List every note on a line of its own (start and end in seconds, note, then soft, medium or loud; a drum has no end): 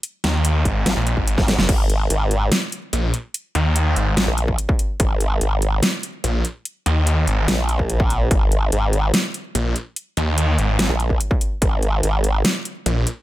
0.03 closed hi-hat medium
0.24 0.64 D#2 loud
0.24 snare medium
0.24 closed hi-hat medium
0.45 closed hi-hat medium
0.65 0.84 G#1 medium
0.65 kick medium
0.65 closed hi-hat medium
0.86 0.95 G#1 medium
0.86 snare loud
0.86 closed hi-hat medium
0.96 1.15 A#1 loud
1.07 closed hi-hat medium
1.17 1.36 G#1 loud
1.17 kick medium
1.27 closed hi-hat medium
1.38 1.57 G#1 medium
1.38 kick loud
1.38 snare medium
1.48 snare medium
1.48 closed hi-hat medium
1.58 1.67 F#1 loud
1.58 snare medium
1.69 2.09 G#1 medium
1.69 kick loud
1.69 closed hi-hat medium
1.69 crash medium
1.90 closed hi-hat medium
2.10 2.50 G#1 medium
2.10 closed hi-hat medium
2.31 closed hi-hat medium
2.52 snare loud
2.52 closed hi-hat medium
2.72 closed hi-hat medium
2.93 3.12 A#1 medium
2.93 closed hi-hat medium
3.14 closed hi-hat medium
3.34 closed hi-hat medium
3.55 3.95 D#2 medium
3.55 closed hi-hat medium
3.76 closed hi-hat medium
3.96 4.15 G#1 medium
3.96 closed hi-hat medium
4.17 4.26 G#1 loud
4.17 snare loud
4.17 closed hi-hat medium
4.27 4.57 A#1 loud
4.38 closed hi-hat medium
4.48 kick medium
4.58 closed hi-hat medium
4.69 kick loud
4.79 closed hi-hat medium
5.00 5.40 G#1 medium
5.00 kick loud
5.00 closed hi-hat medium
5.20 closed hi-hat medium
5.41 5.81 G#1 loud
5.41 closed hi-hat medium
5.62 closed hi-hat medium
5.83 snare loud
5.83 closed hi-hat medium
6.03 closed hi-hat medium
6.24 6.43 A#1 loud
6.24 closed hi-hat medium
6.45 closed hi-hat medium
6.65 closed hi-hat medium
6.86 7.26 D#2 medium
6.86 closed hi-hat medium
7.07 closed hi-hat medium
7.27 7.46 G#1 loud
7.27 closed hi-hat medium
7.48 8.29 A#1 loud
7.48 snare loud
7.48 closed hi-hat medium
7.69 closed hi-hat medium
7.79 kick medium
7.90 closed hi-hat medium
8.00 kick loud
8.10 closed hi-hat medium
8.31 8.71 G#1 medium
8.31 kick loud
8.31 closed hi-hat medium
8.52 closed hi-hat medium
8.72 9.12 G#1 loud
8.72 closed hi-hat medium
8.93 closed hi-hat soft
9.14 snare loud
9.14 closed hi-hat medium
9.34 closed hi-hat soft
9.55 9.74 A#1 medium
9.55 closed hi-hat medium
9.76 closed hi-hat medium
9.96 closed hi-hat medium
10.17 10.57 D#2 medium
10.17 closed hi-hat medium
10.38 closed hi-hat medium
10.58 10.78 G#1 medium
10.58 closed hi-hat soft
10.79 10.88 G#1 loud
10.79 snare loud
10.79 closed hi-hat medium
10.89 11.19 A#1 medium
11.00 closed hi-hat soft
11.10 kick medium
11.21 closed hi-hat medium
11.31 kick loud
11.41 closed hi-hat medium
11.62 12.02 G#1 loud
11.62 kick loud
11.62 closed hi-hat medium
11.83 closed hi-hat medium
12.03 12.43 G#1 loud
12.03 closed hi-hat medium
12.24 closed hi-hat soft
12.45 snare loud
12.45 closed hi-hat medium
12.65 closed hi-hat medium
12.86 13.05 A#1 medium
12.86 closed hi-hat medium
13.07 closed hi-hat medium